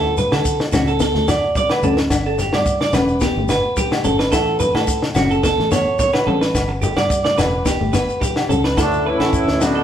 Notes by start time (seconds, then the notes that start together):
Already playing: D2 E4 A4
0.17 B4, low conga, shekere
0.32 D3 A4, snare, high conga, low agogo
0.45 kick, shekere
0.60 snare, high conga
0.72 C#2 C#4 F#4, snare, high conga, low conga, low agogo, shekere
0.87 A4, shekere
1.00 B3 A4, kick, snare, shekere
1.15 D2 A3, snare
1.28 F#3 D5, snare, high conga, low agogo, shekere
1.55 D5, kick, low conga, shekere
1.70 B4, snare, high conga, low agogo
1.83 D2 C#4 A4, low conga, shekere
1.97 muted clean electric guitar stroke, snare, shekere
2.10 G1 D4, kick, snare, low agogo, shekere
2.26 A4
2.38 G4, snare, low conga, shekere
2.53 G2 D5, snare, high conga, low agogo
2.66 kick, shekere
2.81 D5, snare, high conga
2.93 E1 C#4 B4, snare, high conga, low conga, low agogo, shekere
3.08 shekere
3.20 B3 G4, kick, snare, shekere
3.36 G1 A3
3.49 B4, muted steel-string acoustic guitar stroke, snare, high conga, low agogo, shekere
3.77 G4, kick, low conga, shekere
3.91 snare, high conga, low agogo
4.04 G1 C#4 A4, low conga, shekere
4.19 B4, snare, shekere
4.32 A1 E4 A4, kick, snare, low agogo, shekere
4.60 B4, low conga, shekere
4.74 A2 A4, snare, high conga, low agogo
4.88 kick, shekere
5.02 snare, high conga
5.15 F#1 C#4 F#4, snare, high conga, low conga, low agogo, shekere
5.31 A4, shekere
5.43 B3 A4, kick, snare, shekere
5.58 A1 A3, snare
5.72 B3 C#5, snare, high conga, low agogo, shekere
5.99 C#5, kick, low conga, shekere
6.13 B4, snare, high conga, low agogo
6.27 A1 C#4 A4, low conga
6.41 B4, snare, shekere
6.54 G1, muted steel-string acoustic guitar stroke, kick, snare, low agogo, shekere
6.69 muted clean electric guitar stroke
6.82 G4, low conga, shekere
6.97 G2 D5, snare, high conga, low agogo, shekere
7.10 kick, shekere
7.24 D5, snare, high conga
7.38 E1 C#4 B4, snare, high conga, low conga, low agogo, shekere
7.66 B3 G4, kick, snare, shekere
7.81 G1 A3
7.93 B3 B4, snare, low agogo, shekere
8.09 shekere
8.21 G4, kick, low conga, shekere
8.36 snare, high conga, low agogo
8.49 C#2 C#4 A4, low conga, shekere
8.64 B4, snare
8.77 D2 A2 D3 A3 D4 E4 A4, kick, snare, low agogo, shekere
8.93 shekere
9.05 A2 E3 C#4 E4 B4
9.19 A1 A4, snare, low agogo
9.33 kick, shekere
9.47 D2, snare
9.61 B2 D3 B3 C#4 D4 F#4, snare, low conga, low agogo, shekere
9.75 A4